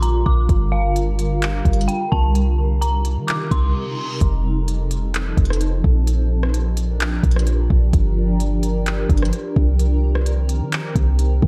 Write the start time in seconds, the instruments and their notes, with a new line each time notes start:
Already playing: 808-style bass A#1, ambient pad D3 G3 F4 A#4
0.02 synth bell A#5, closed hi-hat
0.26 808-style bass A#1, synth bell D6, kick
0.49 808-style bass G1, ambient pad D3 G3, kick, closed hi-hat
0.72 synth bell F5
0.96 closed hi-hat
1.19 closed hi-hat
1.42 clap, closed hi-hat
1.65 808-style bass G1, kick, closed hi-hat
1.73 closed hi-hat
1.81 closed hi-hat
1.88 synth bell G5, closed hi-hat
2.12 808-style bass C2, synth bell A5, kick
2.35 ambient pad C3 G3 D#4, closed hi-hat
2.81 synth bell A#5, closed hi-hat
3.05 closed hi-hat
3.17 808-style bass D#3
3.27 synth bell D6, clap, closed hi-hat, reverse cymbal
3.51 808-style bass C2, synth bell C6, kick, closed hi-hat
4.21 808-style bass F1, ambient pad F3 C4 D#4 A4, kick, closed hi-hat
4.68 closed hi-hat
4.91 closed hi-hat
5.14 clap, closed hi-hat
5.37 808-style bass F1, kick, closed hi-hat
5.45 closed hi-hat
5.50 cross-stick, closed hi-hat
5.61 closed hi-hat
5.84 808-style bass A#1, kick
6.07 ambient pad D4 G4 A#4, closed hi-hat
6.43 cross-stick
6.54 closed hi-hat
6.77 closed hi-hat
7.00 clap, closed hi-hat
7.23 808-style bass A#1, kick, closed hi-hat
7.31 closed hi-hat
7.36 cross-stick, closed hi-hat
7.47 closed hi-hat
7.70 808-style bass A#1, kick
7.93 808-style bass G1, kick, closed hi-hat
8.40 closed hi-hat
8.63 closed hi-hat
8.86 clap, closed hi-hat
9.09 808-style bass G1, kick, closed hi-hat
9.17 closed hi-hat
9.22 cross-stick, closed hi-hat
9.33 closed hi-hat
9.56 808-style bass C2, kick
9.79 ambient pad D#3 C4 G4, closed hi-hat
10.15 cross-stick
10.26 closed hi-hat
10.49 closed hi-hat
10.61 808-style bass D#3
10.72 clap, closed hi-hat
10.96 808-style bass C2, kick, closed hi-hat
11.19 closed hi-hat
11.42 808-style bass C3, kick